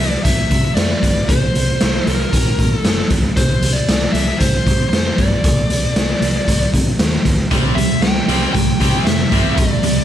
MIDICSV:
0, 0, Header, 1, 5, 480
1, 0, Start_track
1, 0, Tempo, 518135
1, 1197, Time_signature, 4, 2, 24, 8
1, 9304, End_track
2, 0, Start_track
2, 0, Title_t, "Lead electric guitar"
2, 0, Program_c, 0, 29
2, 0, Note_on_c, 0, 76, 97
2, 193, Note_off_c, 0, 76, 0
2, 226, Note_on_c, 0, 76, 92
2, 693, Note_off_c, 0, 76, 0
2, 696, Note_on_c, 0, 74, 89
2, 1187, Note_on_c, 0, 72, 91
2, 1202, Note_off_c, 0, 74, 0
2, 1920, Note_off_c, 0, 72, 0
2, 1924, Note_on_c, 0, 70, 65
2, 2535, Note_off_c, 0, 70, 0
2, 2535, Note_on_c, 0, 69, 65
2, 2845, Note_off_c, 0, 69, 0
2, 3120, Note_on_c, 0, 72, 82
2, 3454, Note_on_c, 0, 74, 86
2, 3490, Note_off_c, 0, 72, 0
2, 3820, Note_off_c, 0, 74, 0
2, 3824, Note_on_c, 0, 76, 93
2, 4061, Note_on_c, 0, 72, 93
2, 4079, Note_off_c, 0, 76, 0
2, 4521, Note_off_c, 0, 72, 0
2, 4533, Note_on_c, 0, 72, 76
2, 4784, Note_on_c, 0, 74, 78
2, 4793, Note_off_c, 0, 72, 0
2, 6193, Note_off_c, 0, 74, 0
2, 7183, Note_on_c, 0, 76, 84
2, 7412, Note_off_c, 0, 76, 0
2, 7428, Note_on_c, 0, 79, 96
2, 7893, Note_off_c, 0, 79, 0
2, 7905, Note_on_c, 0, 79, 91
2, 8376, Note_on_c, 0, 76, 89
2, 8403, Note_off_c, 0, 79, 0
2, 8858, Note_off_c, 0, 76, 0
2, 8862, Note_on_c, 0, 74, 90
2, 9304, Note_off_c, 0, 74, 0
2, 9304, End_track
3, 0, Start_track
3, 0, Title_t, "Overdriven electric guitar"
3, 0, Program_c, 1, 29
3, 6962, Note_on_c, 1, 48, 80
3, 6969, Note_on_c, 1, 55, 89
3, 6973, Note_on_c, 1, 60, 88
3, 7185, Note_off_c, 1, 48, 0
3, 7188, Note_off_c, 1, 55, 0
3, 7190, Note_off_c, 1, 60, 0
3, 7203, Note_on_c, 1, 48, 62
3, 7212, Note_on_c, 1, 55, 76
3, 7416, Note_off_c, 1, 48, 0
3, 7420, Note_off_c, 1, 55, 0
3, 7445, Note_on_c, 1, 48, 70
3, 7447, Note_on_c, 1, 55, 74
3, 7656, Note_off_c, 1, 48, 0
3, 7657, Note_off_c, 1, 55, 0
3, 7677, Note_on_c, 1, 48, 89
3, 7684, Note_on_c, 1, 55, 85
3, 7693, Note_on_c, 1, 60, 88
3, 7902, Note_off_c, 1, 48, 0
3, 7905, Note_off_c, 1, 55, 0
3, 7910, Note_off_c, 1, 60, 0
3, 7921, Note_on_c, 1, 48, 64
3, 7923, Note_on_c, 1, 55, 72
3, 8134, Note_off_c, 1, 48, 0
3, 8135, Note_off_c, 1, 55, 0
3, 8155, Note_on_c, 1, 48, 83
3, 8162, Note_on_c, 1, 55, 83
3, 8165, Note_on_c, 1, 60, 90
3, 8380, Note_off_c, 1, 48, 0
3, 8384, Note_off_c, 1, 55, 0
3, 8385, Note_off_c, 1, 60, 0
3, 8394, Note_on_c, 1, 48, 70
3, 8398, Note_on_c, 1, 55, 82
3, 8609, Note_off_c, 1, 48, 0
3, 8612, Note_off_c, 1, 55, 0
3, 8640, Note_on_c, 1, 48, 76
3, 8645, Note_on_c, 1, 55, 87
3, 8650, Note_on_c, 1, 60, 89
3, 8862, Note_off_c, 1, 48, 0
3, 8864, Note_off_c, 1, 55, 0
3, 8867, Note_off_c, 1, 60, 0
3, 8873, Note_on_c, 1, 48, 67
3, 8878, Note_on_c, 1, 55, 78
3, 9088, Note_off_c, 1, 48, 0
3, 9091, Note_off_c, 1, 55, 0
3, 9114, Note_on_c, 1, 48, 65
3, 9118, Note_on_c, 1, 55, 70
3, 9304, Note_off_c, 1, 48, 0
3, 9304, Note_off_c, 1, 55, 0
3, 9304, End_track
4, 0, Start_track
4, 0, Title_t, "Picked electric bass"
4, 0, Program_c, 2, 34
4, 0, Note_on_c, 2, 36, 82
4, 148, Note_off_c, 2, 36, 0
4, 233, Note_on_c, 2, 36, 90
4, 394, Note_off_c, 2, 36, 0
4, 470, Note_on_c, 2, 48, 80
4, 632, Note_off_c, 2, 48, 0
4, 705, Note_on_c, 2, 41, 76
4, 869, Note_off_c, 2, 41, 0
4, 956, Note_on_c, 2, 31, 79
4, 1116, Note_off_c, 2, 31, 0
4, 1192, Note_on_c, 2, 36, 83
4, 1353, Note_off_c, 2, 36, 0
4, 1440, Note_on_c, 2, 36, 82
4, 1599, Note_off_c, 2, 36, 0
4, 1684, Note_on_c, 2, 36, 85
4, 1842, Note_off_c, 2, 36, 0
4, 1917, Note_on_c, 2, 36, 82
4, 2077, Note_off_c, 2, 36, 0
4, 2157, Note_on_c, 2, 34, 91
4, 2318, Note_off_c, 2, 34, 0
4, 2400, Note_on_c, 2, 46, 85
4, 2559, Note_off_c, 2, 46, 0
4, 2640, Note_on_c, 2, 30, 81
4, 2799, Note_off_c, 2, 30, 0
4, 2878, Note_on_c, 2, 37, 86
4, 3038, Note_off_c, 2, 37, 0
4, 3117, Note_on_c, 2, 36, 90
4, 3277, Note_off_c, 2, 36, 0
4, 3345, Note_on_c, 2, 36, 81
4, 3509, Note_off_c, 2, 36, 0
4, 3599, Note_on_c, 2, 36, 82
4, 3759, Note_off_c, 2, 36, 0
4, 3831, Note_on_c, 2, 36, 86
4, 3993, Note_off_c, 2, 36, 0
4, 4080, Note_on_c, 2, 36, 90
4, 4239, Note_off_c, 2, 36, 0
4, 4323, Note_on_c, 2, 48, 85
4, 4482, Note_off_c, 2, 48, 0
4, 4565, Note_on_c, 2, 41, 82
4, 4723, Note_off_c, 2, 41, 0
4, 4798, Note_on_c, 2, 31, 84
4, 4958, Note_off_c, 2, 31, 0
4, 5040, Note_on_c, 2, 36, 87
4, 5199, Note_off_c, 2, 36, 0
4, 5277, Note_on_c, 2, 36, 84
4, 5437, Note_off_c, 2, 36, 0
4, 5516, Note_on_c, 2, 36, 82
4, 5677, Note_off_c, 2, 36, 0
4, 5752, Note_on_c, 2, 36, 82
4, 5914, Note_off_c, 2, 36, 0
4, 5999, Note_on_c, 2, 36, 88
4, 6159, Note_off_c, 2, 36, 0
4, 6242, Note_on_c, 2, 48, 78
4, 6400, Note_off_c, 2, 48, 0
4, 6483, Note_on_c, 2, 39, 73
4, 6641, Note_off_c, 2, 39, 0
4, 6714, Note_on_c, 2, 38, 78
4, 6875, Note_off_c, 2, 38, 0
4, 6955, Note_on_c, 2, 36, 84
4, 7115, Note_off_c, 2, 36, 0
4, 7187, Note_on_c, 2, 36, 83
4, 7350, Note_off_c, 2, 36, 0
4, 7429, Note_on_c, 2, 36, 88
4, 7591, Note_off_c, 2, 36, 0
4, 7671, Note_on_c, 2, 36, 80
4, 7832, Note_off_c, 2, 36, 0
4, 7911, Note_on_c, 2, 36, 90
4, 8072, Note_off_c, 2, 36, 0
4, 8155, Note_on_c, 2, 48, 87
4, 8315, Note_off_c, 2, 48, 0
4, 8398, Note_on_c, 2, 41, 81
4, 8556, Note_off_c, 2, 41, 0
4, 8634, Note_on_c, 2, 31, 75
4, 8794, Note_off_c, 2, 31, 0
4, 8874, Note_on_c, 2, 36, 89
4, 9033, Note_off_c, 2, 36, 0
4, 9107, Note_on_c, 2, 36, 77
4, 9268, Note_off_c, 2, 36, 0
4, 9304, End_track
5, 0, Start_track
5, 0, Title_t, "Drums"
5, 231, Note_on_c, 9, 36, 81
5, 231, Note_on_c, 9, 42, 80
5, 323, Note_off_c, 9, 42, 0
5, 324, Note_off_c, 9, 36, 0
5, 470, Note_on_c, 9, 42, 55
5, 472, Note_on_c, 9, 36, 75
5, 563, Note_off_c, 9, 42, 0
5, 564, Note_off_c, 9, 36, 0
5, 710, Note_on_c, 9, 42, 89
5, 711, Note_on_c, 9, 38, 113
5, 803, Note_off_c, 9, 42, 0
5, 804, Note_off_c, 9, 38, 0
5, 953, Note_on_c, 9, 36, 79
5, 957, Note_on_c, 9, 42, 58
5, 1046, Note_off_c, 9, 36, 0
5, 1050, Note_off_c, 9, 42, 0
5, 1194, Note_on_c, 9, 36, 108
5, 1195, Note_on_c, 9, 42, 80
5, 1286, Note_off_c, 9, 36, 0
5, 1288, Note_off_c, 9, 42, 0
5, 1437, Note_on_c, 9, 42, 59
5, 1529, Note_off_c, 9, 42, 0
5, 1673, Note_on_c, 9, 42, 77
5, 1674, Note_on_c, 9, 38, 108
5, 1765, Note_off_c, 9, 42, 0
5, 1766, Note_off_c, 9, 38, 0
5, 1917, Note_on_c, 9, 42, 54
5, 2010, Note_off_c, 9, 42, 0
5, 2158, Note_on_c, 9, 36, 75
5, 2160, Note_on_c, 9, 42, 75
5, 2251, Note_off_c, 9, 36, 0
5, 2253, Note_off_c, 9, 42, 0
5, 2398, Note_on_c, 9, 36, 82
5, 2400, Note_on_c, 9, 42, 52
5, 2490, Note_off_c, 9, 36, 0
5, 2492, Note_off_c, 9, 42, 0
5, 2636, Note_on_c, 9, 42, 75
5, 2637, Note_on_c, 9, 38, 111
5, 2729, Note_off_c, 9, 42, 0
5, 2730, Note_off_c, 9, 38, 0
5, 2872, Note_on_c, 9, 42, 54
5, 2878, Note_on_c, 9, 36, 81
5, 2965, Note_off_c, 9, 42, 0
5, 2971, Note_off_c, 9, 36, 0
5, 3120, Note_on_c, 9, 36, 113
5, 3120, Note_on_c, 9, 42, 76
5, 3213, Note_off_c, 9, 36, 0
5, 3213, Note_off_c, 9, 42, 0
5, 3357, Note_on_c, 9, 42, 64
5, 3450, Note_off_c, 9, 42, 0
5, 3599, Note_on_c, 9, 42, 80
5, 3600, Note_on_c, 9, 38, 104
5, 3692, Note_off_c, 9, 42, 0
5, 3693, Note_off_c, 9, 38, 0
5, 3840, Note_on_c, 9, 42, 60
5, 3933, Note_off_c, 9, 42, 0
5, 4080, Note_on_c, 9, 42, 81
5, 4082, Note_on_c, 9, 36, 80
5, 4173, Note_off_c, 9, 42, 0
5, 4174, Note_off_c, 9, 36, 0
5, 4323, Note_on_c, 9, 36, 79
5, 4325, Note_on_c, 9, 42, 55
5, 4416, Note_off_c, 9, 36, 0
5, 4418, Note_off_c, 9, 42, 0
5, 4567, Note_on_c, 9, 42, 78
5, 4568, Note_on_c, 9, 38, 108
5, 4659, Note_off_c, 9, 42, 0
5, 4660, Note_off_c, 9, 38, 0
5, 4800, Note_on_c, 9, 42, 58
5, 4802, Note_on_c, 9, 36, 84
5, 4893, Note_off_c, 9, 42, 0
5, 4894, Note_off_c, 9, 36, 0
5, 5038, Note_on_c, 9, 42, 90
5, 5042, Note_on_c, 9, 36, 112
5, 5130, Note_off_c, 9, 42, 0
5, 5134, Note_off_c, 9, 36, 0
5, 5281, Note_on_c, 9, 42, 65
5, 5373, Note_off_c, 9, 42, 0
5, 5522, Note_on_c, 9, 42, 84
5, 5523, Note_on_c, 9, 38, 106
5, 5615, Note_off_c, 9, 42, 0
5, 5616, Note_off_c, 9, 38, 0
5, 5762, Note_on_c, 9, 42, 64
5, 5855, Note_off_c, 9, 42, 0
5, 6001, Note_on_c, 9, 36, 79
5, 6004, Note_on_c, 9, 42, 77
5, 6094, Note_off_c, 9, 36, 0
5, 6097, Note_off_c, 9, 42, 0
5, 6241, Note_on_c, 9, 36, 82
5, 6242, Note_on_c, 9, 42, 59
5, 6333, Note_off_c, 9, 36, 0
5, 6334, Note_off_c, 9, 42, 0
5, 6478, Note_on_c, 9, 42, 81
5, 6479, Note_on_c, 9, 38, 110
5, 6570, Note_off_c, 9, 42, 0
5, 6571, Note_off_c, 9, 38, 0
5, 6720, Note_on_c, 9, 36, 81
5, 6722, Note_on_c, 9, 42, 58
5, 6812, Note_off_c, 9, 36, 0
5, 6815, Note_off_c, 9, 42, 0
5, 6958, Note_on_c, 9, 36, 110
5, 6958, Note_on_c, 9, 42, 76
5, 7051, Note_off_c, 9, 36, 0
5, 7051, Note_off_c, 9, 42, 0
5, 7205, Note_on_c, 9, 42, 58
5, 7297, Note_off_c, 9, 42, 0
5, 7432, Note_on_c, 9, 42, 74
5, 7433, Note_on_c, 9, 38, 111
5, 7525, Note_off_c, 9, 42, 0
5, 7526, Note_off_c, 9, 38, 0
5, 7677, Note_on_c, 9, 42, 57
5, 7770, Note_off_c, 9, 42, 0
5, 7917, Note_on_c, 9, 36, 82
5, 7920, Note_on_c, 9, 42, 75
5, 8010, Note_off_c, 9, 36, 0
5, 8012, Note_off_c, 9, 42, 0
5, 8157, Note_on_c, 9, 36, 73
5, 8160, Note_on_c, 9, 42, 55
5, 8250, Note_off_c, 9, 36, 0
5, 8253, Note_off_c, 9, 42, 0
5, 8398, Note_on_c, 9, 42, 80
5, 8399, Note_on_c, 9, 38, 106
5, 8491, Note_off_c, 9, 42, 0
5, 8492, Note_off_c, 9, 38, 0
5, 8633, Note_on_c, 9, 42, 58
5, 8635, Note_on_c, 9, 36, 83
5, 8726, Note_off_c, 9, 42, 0
5, 8728, Note_off_c, 9, 36, 0
5, 8870, Note_on_c, 9, 42, 88
5, 8873, Note_on_c, 9, 36, 114
5, 8963, Note_off_c, 9, 42, 0
5, 8965, Note_off_c, 9, 36, 0
5, 9107, Note_on_c, 9, 42, 64
5, 9199, Note_off_c, 9, 42, 0
5, 9304, End_track
0, 0, End_of_file